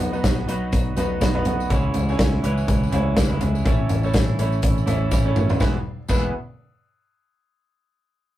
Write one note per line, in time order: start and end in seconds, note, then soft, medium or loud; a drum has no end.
0.00 0.19 B1 medium
0.00 0.13 B2 medium
0.00 0.14 F#3 medium
0.00 0.12 B3 medium
0.00 0.14 B3 medium
0.00 0.13 D#4 medium
0.00 0.13 D#4 loud
0.00 0.12 F#4 medium
0.00 0.13 F#4 medium
0.00 0.13 B4 medium
0.00 floor tom medium
0.00 tambourine soft
0.12 0.45 B3 medium
0.12 0.48 B3 soft
0.12 0.45 D#4 medium
0.12 0.48 D#4 soft
0.12 0.45 F#4 medium
0.12 0.48 F#4 medium
0.12 0.46 B4 medium
0.12 tambourine soft
0.24 0.44 B1 medium
0.24 kick loud
0.24 snare loud
0.24 closed hi-hat medium
0.24 tambourine medium
0.48 0.68 B1 medium
0.48 0.95 F#3 medium
0.48 0.93 B3 medium
0.48 0.96 B3 medium
0.48 0.93 D#4 medium
0.48 0.97 D#4 medium
0.48 0.94 F#4 medium
0.48 0.98 F#4 medium
0.48 0.94 B4 medium
0.48 closed hi-hat medium
0.48 tambourine soft
0.72 0.93 B1 medium
0.72 kick loud
0.72 closed hi-hat loud
0.72 tambourine medium
0.97 1.17 B1 medium
0.97 1.20 F#3 medium
0.97 1.31 B3 medium
0.97 1.21 B3 medium
0.97 1.31 D#4 medium
0.97 1.22 D#4 medium
0.97 1.32 F#4 medium
0.97 1.22 F#4 medium
0.97 1.32 B4 loud
0.97 closed hi-hat medium
0.97 floor tom medium
0.97 tambourine medium
1.21 1.41 B1 medium
1.21 1.35 F#3 medium
1.21 1.35 B3 medium
1.21 1.33 D#4 medium
1.21 1.33 F#4 medium
1.21 1.44 B5 medium
1.21 kick medium
1.21 snare medium
1.21 closed hi-hat medium
1.21 tambourine loud
1.34 1.67 B3 medium
1.34 1.70 B3 soft
1.34 1.70 D#4 soft
1.34 1.67 D#4 medium
1.34 1.70 F#4 medium
1.34 1.67 F#4 medium
1.34 1.68 B4 medium
1.34 floor tom medium
1.45 1.66 B1 medium
1.45 1.69 F#5 medium
1.45 closed hi-hat medium
1.45 floor tom medium
1.45 tambourine soft
1.60 tambourine soft
1.70 1.90 C#2 loud
1.70 2.40 G#2 medium
1.70 2.08 C#3 medium
1.70 2.08 E3 medium
1.70 2.09 G#3 medium
1.70 2.05 C#4 medium
1.70 2.09 C#4 medium
1.70 2.05 E4 medium
1.70 2.07 E4 loud
1.70 2.05 G#4 medium
1.70 2.05 C#5 medium
1.70 kick medium
1.70 closed hi-hat medium
1.70 tambourine soft
1.94 2.15 C#2 medium
1.94 closed hi-hat medium
1.94 floor tom medium
1.94 tambourine soft
2.08 2.43 G#3 soft
2.08 2.41 C#4 medium
2.08 2.43 C#4 soft
2.08 2.44 E4 medium
2.08 2.41 E4 medium
2.08 2.41 G#4 medium
2.08 2.42 C#5 loud
2.08 tambourine soft
2.19 2.39 C#2 medium
2.19 kick loud
2.19 snare loud
2.19 closed hi-hat medium
2.19 tambourine medium
2.43 2.64 C#2 medium
2.43 2.91 E3 medium
2.43 2.91 G#3 medium
2.43 2.89 C#4 medium
2.43 2.93 C#4 medium
2.43 2.89 E4 medium
2.43 2.93 E4 medium
2.43 2.89 G#4 medium
2.43 2.89 B4 medium
2.43 closed hi-hat medium
2.43 tambourine soft
2.58 tambourine soft
2.68 2.88 C#2 medium
2.68 kick loud
2.68 closed hi-hat medium
2.68 tambourine soft
2.83 tambourine soft
2.91 3.13 C#2 medium
2.91 3.15 E3 medium
2.91 3.15 G#3 medium
2.91 3.27 C#4 medium
2.91 3.16 C#4 medium
2.91 3.17 E4 medium
2.91 3.17 G#4 medium
2.91 3.17 C#5 medium
2.91 closed hi-hat medium
2.91 floor tom medium
2.91 tambourine medium
3.16 3.37 C#2 medium
3.16 3.30 E3 medium
3.16 3.30 G#3 medium
3.16 3.31 C#4 medium
3.16 3.40 D#4 medium
3.16 3.29 E4 medium
3.16 3.40 B4 medium
3.16 kick loud
3.16 snare loud
3.16 closed hi-hat medium
3.16 tambourine medium
3.30 3.66 G#3 soft
3.30 3.65 C#4 soft
3.30 3.66 E4 medium
3.30 floor tom medium
3.41 3.62 C#2 medium
3.41 3.88 G#4 medium
3.41 3.88 E5 medium
3.41 closed hi-hat medium
3.41 floor tom medium
3.41 tambourine soft
3.55 tambourine soft
3.65 3.85 A1 loud
3.65 4.03 A2 loud
3.65 4.04 E3 medium
3.65 4.04 A3 medium
3.65 4.00 C#4 medium
3.65 4.04 C#4 medium
3.65 4.02 E4 medium
3.65 4.01 E4 medium
3.65 4.01 A4 medium
3.65 4.01 C#5 medium
3.65 kick loud
3.65 closed hi-hat medium
3.65 tambourine soft
3.89 4.10 A1 medium
3.89 closed hi-hat medium
3.89 floor tom medium
3.89 tambourine soft
4.03 4.38 A3 medium
4.03 4.36 C#4 medium
4.03 4.39 C#4 soft
4.03 4.39 E4 medium
4.03 4.36 E4 medium
4.03 4.36 A4 medium
4.03 4.36 C#5 medium
4.03 tambourine soft
4.14 4.34 A1 medium
4.14 kick loud
4.14 snare loud
4.14 closed hi-hat medium
4.14 tambourine medium
4.39 4.59 A1 medium
4.39 4.86 E3 medium
4.39 4.86 A3 medium
4.39 4.84 C#4 medium
4.39 4.87 C#4 medium
4.39 4.84 E4 medium
4.39 4.88 E4 medium
4.39 4.84 A4 medium
4.39 4.84 C#5 medium
4.39 closed hi-hat medium
4.39 tambourine soft
4.52 tambourine soft
4.62 4.83 A1 medium
4.62 kick loud
4.62 closed hi-hat loud
4.62 tambourine soft
4.78 tambourine soft
4.86 5.07 A1 medium
4.86 5.10 E3 medium
4.86 5.11 A3 medium
4.86 5.22 C#4 medium
4.86 5.11 C#4 medium
4.86 5.22 E4 medium
4.86 5.12 E4 medium
4.86 5.22 A4 medium
4.86 5.22 E5 loud
4.86 closed hi-hat medium
4.86 floor tom medium
4.86 tambourine medium
5.11 5.32 A1 medium
5.11 5.25 E3 medium
5.11 5.26 A3 medium
5.11 5.25 C#4 medium
5.11 5.24 E4 medium
5.11 kick loud
5.11 snare medium
5.11 tambourine loud
5.25 5.60 A3 soft
5.25 5.58 C#4 medium
5.25 5.61 C#4 soft
5.25 5.60 E4 medium
5.25 5.58 E4 medium
5.25 5.58 A4 medium
5.25 5.58 C#5 medium
5.36 5.56 A1 loud
5.36 mid tom medium
5.36 tambourine soft
5.49 floor tom medium
5.49 tambourine soft
5.59 5.75 E1 medium
5.59 5.76 E2 medium
5.59 5.75 E2 medium
5.59 5.76 B2 medium
5.59 5.76 E3 medium
5.59 5.76 G#3 medium
5.59 5.76 B3 medium
5.59 5.77 B3 medium
5.59 5.76 E4 medium
5.59 5.77 E4 medium
5.59 5.76 G#4 medium
5.59 5.76 B4 medium
5.59 kick medium
5.59 snare medium
5.59 tambourine medium
6.08 6.32 E1 medium
6.08 6.29 E2 medium
6.08 6.32 E2 medium
6.08 6.30 B2 medium
6.08 6.30 E3 medium
6.08 6.30 G#3 medium
6.08 6.32 B3 medium
6.08 6.30 B3 medium
6.08 6.32 E4 medium
6.08 6.30 E4 medium
6.08 6.32 G#4 medium
6.08 6.32 B4 medium
6.08 kick medium
6.08 crash medium
6.08 tambourine medium